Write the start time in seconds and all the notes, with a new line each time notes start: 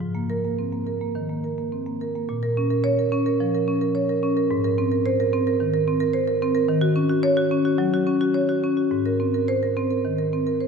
0.01 G#2
0.15 A#3
0.30 A#4
0.45 A#3
0.59 C4
0.72 A#3
0.87 A#4
1.01 A#3
1.15 D#3
1.30 A#3
1.44 A#4
1.58 A#3
1.72 C4
1.86 A#3
2.01 A#4
2.16 A#3
2.29 A#2
2.43 A#4
2.57 C#4
2.70 A#4
2.84 C#5
2.99 A#4
3.12 C#4
3.26 A#4
3.40 F3
3.55 A#4
3.68 C#4
3.81 A#4
3.95 C#5
4.09 A#4
4.23 C#4
4.37 A#4
4.51 G#2
4.64 A#4
4.78 C4
4.92 A#4
5.06 C5
5.20 A#4
5.33 C4
5.47 A#4
5.60 D#3
5.74 A#4
5.88 C4
6.00 A#4
6.13 C5
6.28 A#4
6.42 C4
6.55 A#4
6.68 D#3
6.81 F#4
6.96 C#4
7.09 F#4
7.23 C#5
7.37 F#4
7.51 C#4
7.65 F#4
7.78 F#3
7.94 F#4
8.07 C#4
8.21 F#4
8.34 C#5
8.49 F#4
8.64 C#4
8.77 F#4
8.91 G#2
9.06 A#4
9.20 C4
9.34 A#4
9.48 C5
9.63 A#4
9.77 C4
9.91 A#4
10.05 D#3
10.18 A#4
10.33 C4
10.47 A#4
10.61 C5